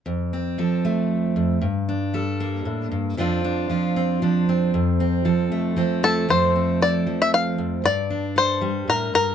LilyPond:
<<
  \new Staff \with { instrumentName = "Five-string banjo" } { \time 3/4 \key f \major \tempo 4 = 116 r2. | r2. | r2. | r2 r8 a'8 |
c''4 d''8. e''16 f''4 | d''4 c''4 bes'8 bes'8 | }
  \new Staff \with { instrumentName = "Steel-string acoustic guitar" } { \time 3/4 \key f \major << { r8 c'8 a'8 a4. | r8 d'8 a'8 bes4. | <f c' d' f'>8 d'8 f'8 c'8 d'8 c'8 | r8 c'8 a'8 a8 c'8 a8 |
<f a c' a'>8 c'8 a'2 | r8 d'8 a'2 | } \\ { f,4 f4. f,8 | g,4 g4 a,8 g,8 | f,4 f4 f4 | f,4 f4 f4 |
f,4. f4 f,8 | g,4. g8 a,8 g,8 | } >> }
>>